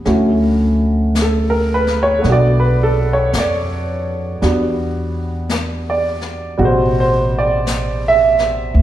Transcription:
0.05 2.20 D2 medium
0.05 2.17 A3 soft
0.05 2.24 C#4 soft
0.05 2.25 E4 soft
0.05 2.25 F#4 medium
0.05 brush sweep soft
0.05 snare soft
1.15 brush sweep soft
1.15 snare soft
1.15 hi-hat pedal soft
1.22 1.53 A4 medium
1.50 1.85 A#4 medium
1.74 1.98 B4 medium
1.87 snare soft
2.03 2.22 C#5 medium
2.19 4.39 A3 medium
2.19 4.41 B3 soft
2.24 3.29 B1 medium
2.24 4.41 D4 soft
2.24 brush sweep soft
2.24 snare soft
2.29 4.41 F#4 medium
2.29 2.63 D5 medium
2.60 2.95 B4 medium
2.83 3.07 A4 medium
3.13 3.32 C#5 medium
3.33 4.38 F2 medium
3.33 brush sweep soft
3.33 snare soft
3.33 hi-hat pedal medium
3.38 5.12 D5 medium
4.42 6.54 E2 medium
4.42 6.56 G3 soft
4.42 6.58 B3 soft
4.42 6.58 D4 soft
4.42 6.57 F#4 medium
4.42 brush sweep soft
4.42 snare soft
5.49 brush sweep soft
5.49 snare soft
5.49 hi-hat pedal soft
5.90 6.56 D5 medium
6.21 snare soft
6.58 8.70 A1 medium
6.58 8.74 B2 soft
6.58 8.74 C#3 soft
6.58 8.74 G3 medium
6.58 8.74 F#4 medium
6.58 brush sweep soft
6.65 6.97 C5 medium
7.00 7.32 C5 medium
7.39 8.03 D5 medium
7.67 brush sweep soft
7.67 snare soft
7.67 hi-hat pedal medium
8.08 8.82 E5 medium
8.39 snare soft
8.73 8.82 D2 medium
8.73 brush sweep soft

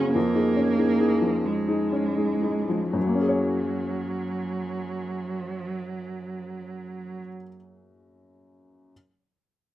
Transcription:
0.00 0.17 C#3 soft
0.00 0.17 A#3 soft
0.00 0.12 C#4 medium
0.00 0.18 F#4 soft
0.00 0.17 G#4 soft
0.13 0.35 F2 soft
0.13 1.47 A#3 medium
0.35 0.54 D#4 soft
0.35 0.55 G#4 soft
0.56 0.91 C#4 soft
0.78 0.98 D#4 soft
0.78 0.98 G#4 soft
1.00 1.20 D#4 soft
1.00 1.20 G#4 soft
1.21 1.97 F3 soft
1.46 2.95 G#3 soft
1.68 1.90 D#4 soft
1.68 1.90 G#4 soft
1.92 2.33 C#4 soft
2.17 2.40 D#4 soft
2.17 2.40 G#4 soft
2.41 2.66 D#4 soft
2.41 2.66 G#4 soft
2.69 2.95 F3 soft
2.93 7.21 F#2 soft
2.93 7.23 F#3 soft
3.00 7.28 F#3 soft
3.07 7.35 A#3 soft
3.15 7.42 C#4 soft
3.21 7.49 G#4 soft
3.29 7.56 C#5 soft

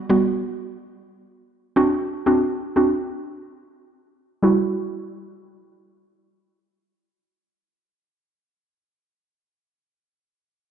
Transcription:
0.10 0.29 G3 medium
0.10 0.29 B3 medium
0.10 0.29 F#4 medium
1.76 1.95 C4 medium
1.76 1.95 D4 medium
1.76 1.96 F#4 loud
2.26 2.45 C4 medium
2.26 2.45 D4 medium
2.26 2.46 F#4 medium
2.76 2.95 C4 medium
2.76 2.95 D4 medium
2.76 2.95 F#4 medium
4.43 8.28 G3 medium
4.43 8.29 E4 medium
4.43 8.29 F#4 medium

